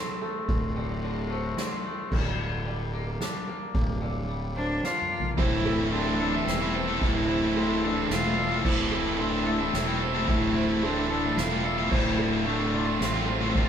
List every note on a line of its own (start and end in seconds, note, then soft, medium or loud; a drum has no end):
0.00 0.48 D2 medium
0.00 0.49 A2 medium
0.00 1.03 D3 medium
0.00 0.20 A3 medium
0.00 1.30 C4 medium
0.00 0.20 A4 medium
0.21 1.29 A3 medium
0.21 0.76 A4 medium
0.48 1.54 D1 loud
0.48 2.12 D2 medium
0.48 kick loud
0.48 ride medium
0.76 2.12 A2 medium
0.76 1.31 D5 medium
0.76 ride medium
1.03 2.40 D3 medium
1.03 ride medium
1.30 1.84 A3 medium
1.30 1.58 C5 medium
1.57 2.12 C4 medium
1.57 2.12 D5 medium
1.57 snare medium
1.57 ride medium
1.85 2.12 A3 medium
2.12 3.17 D1 loud
2.12 3.48 G2 medium
2.12 2.66 A#4 medium
2.12 kick loud
2.12 crash loud
2.40 3.75 D3 medium
2.66 4.02 G3 medium
2.66 3.21 D5 medium
2.93 3.47 A#3 medium
3.20 4.57 D4 medium
3.20 3.46 A#4 medium
3.20 snare medium
3.47 4.55 A#3 medium
3.47 4.02 A#4 medium
3.75 4.80 D1 loud
3.75 5.11 G2 medium
3.75 kick loud
4.02 5.38 D3 medium
4.02 4.56 D5 medium
4.29 5.38 G3 medium
4.56 5.10 A#3 medium
4.56 4.86 D4 loud
4.56 4.84 C5 medium
4.83 5.38 D4 medium
4.83 5.37 F4 loud
4.83 5.38 D5 medium
4.83 snare medium
5.02 mid tom medium
5.11 5.38 A#3 medium
5.20 floor tom loud
5.37 6.43 D1 loud
5.37 5.91 A2 medium
5.37 6.75 A2 medium
5.37 5.92 E3 loud
5.37 5.64 A3 medium
5.37 5.65 C4 loud
5.37 5.88 E4 loud
5.37 5.66 E4 loud
5.37 5.66 A4 loud
5.37 5.65 C5 loud
5.37 kick loud
5.37 ride medium
5.65 8.92 E3 medium
5.65 5.92 A3 medium
5.65 5.93 C4 medium
5.65 5.93 E4 medium
5.65 6.20 A4 medium
5.65 5.94 A4 medium
5.79 5.94 A3 medium
5.79 5.94 C4 medium
5.79 5.94 E4 medium
5.79 5.95 A4 medium
5.92 6.33 A2 medium
5.92 6.89 E3 medium
5.92 6.08 A3 medium
5.92 7.56 C4 medium
5.92 6.07 C4 loud
5.92 6.49 D4 loud
5.92 6.06 E4 medium
5.92 6.06 A4 loud
5.92 ride medium
6.06 6.19 A3 medium
6.06 6.20 C4 medium
6.06 6.20 E4 medium
6.06 6.20 A4 medium
6.20 6.35 A3 medium
6.20 6.34 C4 medium
6.20 6.34 E4 medium
6.20 6.74 A4 medium
6.20 6.34 A4 medium
6.20 6.74 E5 medium
6.20 muted distorted electric guitar stroke medium
6.33 6.62 A3 medium
6.33 6.61 C4 medium
6.33 6.61 E4 medium
6.33 6.60 A4 medium
6.33 muted distorted electric guitar stroke soft
6.47 6.98 E1 medium
6.47 7.03 C4 medium
6.47 9.74 E4 medium
6.47 snare medium
6.47 ride medium
6.60 6.73 A3 medium
6.60 6.74 C4 medium
6.60 6.75 E4 medium
6.60 6.75 A4 medium
6.74 6.89 A3 medium
6.74 6.88 C4 medium
6.74 6.88 E4 medium
6.74 7.83 A4 medium
6.74 6.87 A4 medium
6.74 7.27 C5 medium
6.74 muted distorted electric guitar stroke medium
6.88 7.00 A2 medium
6.88 7.01 E3 medium
6.88 7.01 A3 medium
6.88 7.02 C4 loud
6.88 7.02 E4 medium
6.88 7.02 A4 medium
7.01 8.06 D1 medium
7.01 7.54 A2 medium
7.01 8.38 A2 medium
7.01 7.55 E3 medium
7.01 7.27 A3 loud
7.01 7.28 C4 medium
7.01 7.86 E4 loud
7.01 7.29 E4 loud
7.01 7.29 A4 loud
7.01 kick loud
7.01 ride medium
7.28 7.55 A3 medium
7.28 7.56 C4 medium
7.28 7.56 E4 medium
7.28 7.57 A4 medium
7.28 7.56 C5 medium
7.42 7.56 A3 medium
7.42 7.57 C4 medium
7.42 7.57 E4 medium
7.42 7.58 A4 medium
7.55 7.96 A2 loud
7.55 8.52 E3 medium
7.55 7.70 A3 loud
7.55 7.70 C4 loud
7.55 9.19 C4 medium
7.55 7.69 E4 medium
7.55 8.10 A4 medium
7.55 7.68 A4 loud
7.55 ride medium
7.68 7.82 A3 medium
7.68 7.83 C4 medium
7.68 7.83 E4 medium
7.68 7.83 A4 medium
7.82 7.98 A3 medium
7.82 7.98 C4 medium
7.82 8.13 D4 loud
7.82 7.97 E4 medium
7.82 8.38 A4 medium
7.82 7.97 A4 medium
7.82 muted distorted electric guitar stroke medium
7.96 8.25 A3 medium
7.96 8.24 C4 medium
7.96 8.24 E4 medium
7.96 8.23 A4 medium
7.96 muted distorted electric guitar stroke medium
8.10 8.62 E1 loud
8.10 8.64 F4 loud
8.10 snare medium
8.10 ride medium
8.24 8.36 A3 medium
8.24 8.37 C4 medium
8.24 8.37 E4 medium
8.24 8.38 A4 medium
8.37 8.52 A3 loud
8.37 8.51 C4 medium
8.37 8.51 E4 medium
8.37 9.46 A4 medium
8.37 8.50 A4 loud
8.37 8.65 D5 medium
8.37 muted distorted electric guitar stroke soft
8.51 8.63 A2 medium
8.51 8.64 E3 medium
8.51 8.64 A3 medium
8.51 8.65 C4 medium
8.51 8.65 E4 medium
8.51 8.65 A4 medium
8.64 9.70 D1 loud
8.64 9.17 A2 medium
8.64 10.01 A2 medium
8.64 9.18 E3 loud
8.64 8.91 A3 medium
8.64 8.92 C4 loud
8.64 9.21 E4 medium
8.64 8.92 E4 loud
8.64 8.93 A4 loud
8.64 8.92 C5 medium
8.64 kick loud
8.64 crash loud
8.91 10.28 E3 medium
8.91 9.19 A3 medium
8.91 9.19 C4 medium
8.91 9.20 E4 medium
8.91 9.46 A4 medium
8.91 9.20 A4 loud
9.05 9.19 A3 medium
9.05 9.19 C4 medium
9.05 9.20 E4 medium
9.05 9.20 A4 medium
9.18 9.60 A2 loud
9.18 9.60 E3 loud
9.18 9.34 A3 medium
9.18 10.82 C4 medium
9.18 9.33 C4 medium
9.18 9.75 D4 loud
9.18 9.32 E4 loud
9.18 9.32 A4 medium
9.18 ride medium
9.32 9.45 A3 medium
9.32 9.46 C4 medium
9.32 9.45 E4 medium
9.32 9.46 A4 medium
9.46 9.61 A3 medium
9.46 9.60 C4 medium
9.46 9.59 E4 medium
9.46 10.01 A4 medium
9.46 9.60 A4 medium
9.46 10.01 E5 medium
9.46 muted distorted electric guitar stroke medium
9.59 9.88 A3 medium
9.59 9.88 C4 medium
9.59 9.86 E4 medium
9.59 9.86 A4 medium
9.59 muted distorted electric guitar stroke medium
9.73 10.25 E1 loud
9.73 10.29 C4 medium
9.73 11.10 E4 medium
9.73 snare medium
9.73 ride medium
9.87 9.99 A3 medium
9.87 10.00 C4 medium
9.87 10.00 E4 medium
9.87 10.01 A4 medium
10.00 10.14 A3 medium
10.00 10.14 C4 loud
10.00 10.13 E4 medium
10.00 11.10 A4 medium
10.00 10.13 A4 loud
10.00 10.54 C5 medium
10.00 muted distorted electric guitar stroke medium
10.13 10.26 A2 medium
10.13 10.27 E3 medium
10.13 10.28 A3 medium
10.13 10.28 C4 medium
10.13 10.28 E4 medium
10.13 10.29 A4 medium
10.27 11.33 D1 loud
10.27 10.81 A2 medium
10.27 11.65 A2 medium
10.27 10.82 E3 medium
10.27 10.55 A3 medium
10.27 10.55 C4 medium
10.27 10.85 E4 medium
10.27 10.55 E4 loud
10.27 10.56 A4 loud
10.27 kick loud
10.27 ride medium
10.55 10.83 A3 medium
10.55 10.84 C4 medium
10.55 10.83 E4 medium
10.55 10.84 A4 medium
10.55 10.83 C5 medium
10.69 10.84 A3 medium
10.69 10.84 C4 medium
10.69 10.83 E4 medium
10.69 10.85 A4 medium
10.82 11.24 A2 medium
10.82 11.24 E3 loud
10.82 10.97 A3 medium
10.82 11.95 C4 medium
10.82 10.97 C4 medium
10.82 11.10 D4 loud
10.82 10.96 E4 loud
10.82 11.37 A4 medium
10.82 10.96 A4 loud
10.82 ride medium
10.96 11.10 A3 medium
10.96 11.10 C4 medium
10.96 11.10 E4 medium
10.96 11.11 A4 medium
11.10 11.24 A3 medium
11.10 11.24 C4 medium
11.10 11.39 D4 loud
11.10 11.23 E4 medium
11.10 11.64 A4 medium
11.10 11.24 A4 medium
11.10 muted distorted electric guitar stroke medium
11.23 11.52 A3 medium
11.23 11.51 C4 medium
11.23 11.50 E4 medium
11.23 11.50 A4 medium
11.23 muted distorted electric guitar stroke medium
11.37 11.88 E1 medium
11.37 11.93 F4 medium
11.37 snare medium
11.37 ride medium
11.50 11.63 A3 medium
11.50 11.64 C4 medium
11.50 11.64 E4 medium
11.50 11.65 A4 medium
11.64 11.78 A3 medium
11.64 11.78 C4 medium
11.64 11.77 E4 medium
11.64 12.73 A4 medium
11.64 11.77 A4 loud
11.64 11.92 D5 medium
11.64 muted distorted electric guitar stroke soft
11.77 11.90 A2 medium
11.77 11.91 E3 medium
11.77 11.92 A3 medium
11.77 11.92 C4 medium
11.77 11.90 E4 medium
11.77 11.93 A4 medium
11.91 12.97 D1 loud
11.91 12.45 D2 medium
11.91 13.54 D2 medium
11.91 12.45 A2 loud
11.91 12.18 D3 medium
11.91 12.19 A3 medium
11.91 12.19 C4 loud
11.91 12.46 E4 medium
11.91 12.20 F4 medium
11.91 12.19 C5 loud
11.91 kick loud
11.91 crash loud
12.18 13.55 A2 medium
12.18 12.46 D3 medium
12.18 12.46 A3 medium
12.18 12.47 C4 medium
12.18 12.47 F4 medium
12.18 12.73 A4 medium
12.31 12.46 D3 medium
12.31 12.47 A3 medium
12.31 12.47 C4 medium
12.31 12.47 F4 medium
12.46 12.90 D2 medium
12.46 12.87 A2 loud
12.46 12.61 D3 medium
12.46 13.69 A3 medium
12.46 12.59 A3 medium
12.46 12.59 C4 loud
12.46 13.02 D4 medium
12.46 12.58 F4 medium
12.46 ride medium
12.59 12.73 D3 medium
12.59 12.72 A3 medium
12.59 12.72 C4 medium
12.59 12.72 F4 medium
12.72 12.87 D3 medium
12.72 12.86 A3 medium
12.72 12.86 C4 medium
12.72 13.27 F4 medium
12.72 12.85 F4 medium
12.72 13.28 D5 medium
12.72 muted distorted electric guitar stroke soft
12.86 13.15 D3 medium
12.86 13.14 A3 medium
12.86 13.13 C4 medium
12.86 13.12 F4 medium
12.86 muted distorted electric guitar stroke medium
13.01 13.52 A1 loud
13.01 13.57 C4 medium
13.01 13.69 C4 medium
13.01 snare medium
13.01 ride medium
13.13 13.26 D3 medium
13.13 13.26 A3 medium
13.13 13.27 C4 medium
13.13 13.27 F4 medium
13.27 13.41 D3 medium
13.27 13.40 A3 medium
13.27 13.40 C4 medium
13.27 13.69 F4 medium
13.27 13.39 F4 medium
13.27 13.69 C5 medium
13.27 muted distorted electric guitar stroke soft
13.40 13.54 D2 medium
13.40 13.53 A2 medium
13.40 13.55 D3 medium
13.40 13.54 A3 loud
13.40 13.54 C4 medium
13.40 13.55 F4 medium
13.54 13.69 D1 medium
13.54 13.69 D2 medium
13.54 13.69 A2 loud
13.54 13.69 D3 loud
13.54 13.69 A3 medium
13.54 13.69 C4 loud
13.54 13.69 F4 medium
13.54 13.69 F4 loud
13.54 kick loud
13.54 ride loud